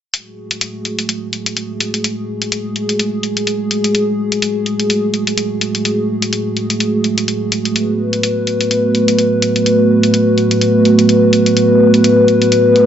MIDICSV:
0, 0, Header, 1, 3, 480
1, 0, Start_track
1, 0, Key_signature, 3, "minor"
1, 0, Tempo, 476190
1, 139, Time_signature, 4, 2, 24, 8
1, 12964, End_track
2, 0, Start_track
2, 0, Title_t, "Analog synth pad"
2, 0, Program_c, 0, 89
2, 138, Note_on_c, 0, 57, 76
2, 139, Note_on_c, 0, 66, 72
2, 139, Note_on_c, 0, 68, 87
2, 7806, Note_off_c, 0, 68, 0
2, 7819, Note_on_c, 0, 71, 89
2, 12964, Note_off_c, 0, 57, 0
2, 12964, Note_off_c, 0, 66, 0
2, 12964, Note_off_c, 0, 71, 0
2, 12964, End_track
3, 0, Start_track
3, 0, Title_t, "Drums"
3, 138, Note_on_c, 9, 42, 62
3, 239, Note_off_c, 9, 42, 0
3, 513, Note_on_c, 9, 42, 51
3, 614, Note_off_c, 9, 42, 0
3, 617, Note_on_c, 9, 42, 64
3, 718, Note_off_c, 9, 42, 0
3, 858, Note_on_c, 9, 42, 36
3, 959, Note_off_c, 9, 42, 0
3, 994, Note_on_c, 9, 42, 51
3, 1095, Note_off_c, 9, 42, 0
3, 1098, Note_on_c, 9, 42, 65
3, 1199, Note_off_c, 9, 42, 0
3, 1339, Note_on_c, 9, 42, 37
3, 1440, Note_off_c, 9, 42, 0
3, 1475, Note_on_c, 9, 42, 53
3, 1576, Note_off_c, 9, 42, 0
3, 1579, Note_on_c, 9, 42, 60
3, 1680, Note_off_c, 9, 42, 0
3, 1819, Note_on_c, 9, 42, 63
3, 1920, Note_off_c, 9, 42, 0
3, 1955, Note_on_c, 9, 42, 50
3, 2056, Note_off_c, 9, 42, 0
3, 2060, Note_on_c, 9, 42, 60
3, 2161, Note_off_c, 9, 42, 0
3, 2436, Note_on_c, 9, 42, 50
3, 2537, Note_off_c, 9, 42, 0
3, 2540, Note_on_c, 9, 42, 64
3, 2641, Note_off_c, 9, 42, 0
3, 2780, Note_on_c, 9, 42, 34
3, 2881, Note_off_c, 9, 42, 0
3, 2915, Note_on_c, 9, 42, 49
3, 3016, Note_off_c, 9, 42, 0
3, 3019, Note_on_c, 9, 42, 62
3, 3120, Note_off_c, 9, 42, 0
3, 3258, Note_on_c, 9, 42, 36
3, 3359, Note_off_c, 9, 42, 0
3, 3395, Note_on_c, 9, 42, 55
3, 3496, Note_off_c, 9, 42, 0
3, 3498, Note_on_c, 9, 42, 57
3, 3599, Note_off_c, 9, 42, 0
3, 3739, Note_on_c, 9, 42, 59
3, 3839, Note_off_c, 9, 42, 0
3, 3874, Note_on_c, 9, 42, 49
3, 3975, Note_off_c, 9, 42, 0
3, 3978, Note_on_c, 9, 42, 62
3, 4079, Note_off_c, 9, 42, 0
3, 4354, Note_on_c, 9, 42, 48
3, 4455, Note_off_c, 9, 42, 0
3, 4458, Note_on_c, 9, 42, 65
3, 4559, Note_off_c, 9, 42, 0
3, 4698, Note_on_c, 9, 42, 32
3, 4799, Note_off_c, 9, 42, 0
3, 4834, Note_on_c, 9, 42, 48
3, 4935, Note_off_c, 9, 42, 0
3, 4938, Note_on_c, 9, 42, 59
3, 5039, Note_off_c, 9, 42, 0
3, 5178, Note_on_c, 9, 42, 36
3, 5279, Note_off_c, 9, 42, 0
3, 5314, Note_on_c, 9, 42, 53
3, 5415, Note_off_c, 9, 42, 0
3, 5419, Note_on_c, 9, 42, 59
3, 5519, Note_off_c, 9, 42, 0
3, 5658, Note_on_c, 9, 42, 57
3, 5759, Note_off_c, 9, 42, 0
3, 5794, Note_on_c, 9, 42, 47
3, 5895, Note_off_c, 9, 42, 0
3, 5898, Note_on_c, 9, 42, 57
3, 5999, Note_off_c, 9, 42, 0
3, 6273, Note_on_c, 9, 42, 48
3, 6374, Note_off_c, 9, 42, 0
3, 6378, Note_on_c, 9, 42, 61
3, 6478, Note_off_c, 9, 42, 0
3, 6619, Note_on_c, 9, 42, 32
3, 6719, Note_off_c, 9, 42, 0
3, 6754, Note_on_c, 9, 42, 47
3, 6855, Note_off_c, 9, 42, 0
3, 6858, Note_on_c, 9, 42, 57
3, 6959, Note_off_c, 9, 42, 0
3, 7099, Note_on_c, 9, 42, 35
3, 7199, Note_off_c, 9, 42, 0
3, 7234, Note_on_c, 9, 42, 50
3, 7335, Note_off_c, 9, 42, 0
3, 7339, Note_on_c, 9, 42, 56
3, 7440, Note_off_c, 9, 42, 0
3, 7580, Note_on_c, 9, 42, 58
3, 7680, Note_off_c, 9, 42, 0
3, 7715, Note_on_c, 9, 42, 47
3, 7816, Note_off_c, 9, 42, 0
3, 7820, Note_on_c, 9, 42, 58
3, 7920, Note_off_c, 9, 42, 0
3, 8195, Note_on_c, 9, 42, 47
3, 8296, Note_off_c, 9, 42, 0
3, 8300, Note_on_c, 9, 42, 62
3, 8401, Note_off_c, 9, 42, 0
3, 8539, Note_on_c, 9, 42, 34
3, 8640, Note_off_c, 9, 42, 0
3, 8675, Note_on_c, 9, 42, 46
3, 8776, Note_off_c, 9, 42, 0
3, 8779, Note_on_c, 9, 42, 58
3, 8880, Note_off_c, 9, 42, 0
3, 9019, Note_on_c, 9, 42, 34
3, 9120, Note_off_c, 9, 42, 0
3, 9154, Note_on_c, 9, 42, 51
3, 9255, Note_off_c, 9, 42, 0
3, 9259, Note_on_c, 9, 42, 54
3, 9360, Note_off_c, 9, 42, 0
3, 9499, Note_on_c, 9, 42, 58
3, 9600, Note_off_c, 9, 42, 0
3, 9635, Note_on_c, 9, 42, 47
3, 9736, Note_off_c, 9, 42, 0
3, 9739, Note_on_c, 9, 42, 60
3, 9840, Note_off_c, 9, 42, 0
3, 10114, Note_on_c, 9, 42, 51
3, 10215, Note_off_c, 9, 42, 0
3, 10219, Note_on_c, 9, 42, 62
3, 10320, Note_off_c, 9, 42, 0
3, 10459, Note_on_c, 9, 42, 34
3, 10560, Note_off_c, 9, 42, 0
3, 10595, Note_on_c, 9, 42, 49
3, 10696, Note_off_c, 9, 42, 0
3, 10699, Note_on_c, 9, 42, 61
3, 10800, Note_off_c, 9, 42, 0
3, 10940, Note_on_c, 9, 42, 37
3, 11040, Note_off_c, 9, 42, 0
3, 11075, Note_on_c, 9, 42, 51
3, 11176, Note_off_c, 9, 42, 0
3, 11179, Note_on_c, 9, 42, 59
3, 11280, Note_off_c, 9, 42, 0
3, 11419, Note_on_c, 9, 42, 60
3, 11520, Note_off_c, 9, 42, 0
3, 11555, Note_on_c, 9, 42, 47
3, 11656, Note_off_c, 9, 42, 0
3, 11659, Note_on_c, 9, 42, 61
3, 11760, Note_off_c, 9, 42, 0
3, 12035, Note_on_c, 9, 42, 52
3, 12136, Note_off_c, 9, 42, 0
3, 12139, Note_on_c, 9, 42, 67
3, 12240, Note_off_c, 9, 42, 0
3, 12380, Note_on_c, 9, 42, 36
3, 12481, Note_off_c, 9, 42, 0
3, 12516, Note_on_c, 9, 42, 52
3, 12616, Note_off_c, 9, 42, 0
3, 12619, Note_on_c, 9, 42, 63
3, 12720, Note_off_c, 9, 42, 0
3, 12859, Note_on_c, 9, 42, 37
3, 12960, Note_off_c, 9, 42, 0
3, 12964, End_track
0, 0, End_of_file